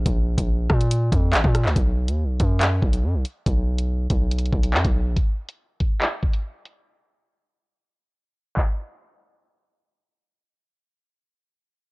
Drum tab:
HH |x--------x-----------x--x-----x-----x-----x-----|x--------x--------x-----x--------x--------x-----|x--------x--------x-----x-x-x----x-----x--------|x--------x--------x-----x--------x--------x-----|
CP |------------------------------------x--------x--|------------------------x-----------------------|------------------------------------x-----------|------------------------x-----------------------|
SD |------------------r-----------------------r-----|------------------------------------------------|------------------------------------------------|------------------------------------------------|
BD |o--------o--------o-----------o--------o--------|o-----------------o-----------o-----------------|o-----------------o-----------o--------o--------|o-----------------o-----------o-----------------|

HH |------------------------------------------------|------------------------------------------------|------------------------------------------------|
CP |------------------------------------------------|x-----------------------------------------------|------------------------------------------------|
SD |------------------------------------------------|------------------------------------------------|------------------------------------------------|
BD |------------------------------------------------|o-----------------------------------------------|------------------------------------------------|